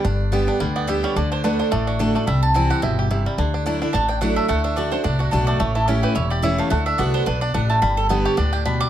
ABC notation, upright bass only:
X:1
M:4/4
L:1/8
Q:"Swing" 1/4=216
K:G
V:1 name="Upright bass" clef=bass
G,,,4 D,,4 | D,,4 A,,,4 | C,,4 G,,,4 | D,,4 A,,,4 |
D,,4 C,,2 B,,,2 | A,,,4 E,,,4 | D,,2 C,,2 B,,,2 A,,,2 | G,,,4 D,,4 |]